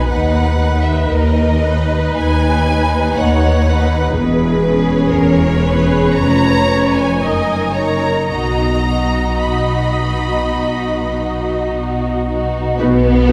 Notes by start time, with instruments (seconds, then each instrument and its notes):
Already playing: violin section D#4 B4 G#5
0.08 double bass section D#2, cello section D#2, violin section D#4 B4 F#5, viola section B4
0.60 violin section D#4 B4
0.83 violin section E5
1.10 double bass section D#2, cello section D#2, viola section A#4, violin section D#5
1.64 violin section D#4 B4, viola section B4
2.17 double bass section D#2, cello section D#2, violin section G#5
2.68 violin section D#4 B4
3.17 cello section D#2, double bass section D#2, viola section C#5, violin section F#5
3.67 violin section D#4 B4, viola section B4
4.15 double bass section E1, cello section E2, viola section G#4, violin section B4
4.66 violin section C#4 G#4
5.11 double bass section E1, cello section E2, viola section A#4, violin section C#5
5.65 violin section C#4 G#4, viola section B4
6.16 double bass section F1, cello section F2, violin section C#4 B4 A#5, viola section C#5
6.69 violin section C#4 B4
6.94 violin section G#5
7.21 double bass section F#1, cello section F#2, violin section D#4 A#4, viola section D#5
7.74 violin section D#4 A#4 A#5, viola section C#5
8.29 double bass section B1, cello section B2, violin section D#4 F#4 A#5, viola section D#5
8.87 violin section D#4 F#4
9.40 double bass section B1, cello section B2, violin section B5
10.01 violin section D#4 F#4
10.54 double bass section B1, cello section B2
11.12 violin section D#4 F#4
11.68 double bass section B1, cello section B2
12.27 violin section D#4 F#4
12.77 double bass section B1, cello section B2, violin section B3 B4, viola section D#4 F#4
13.28 viola section D#4 F#4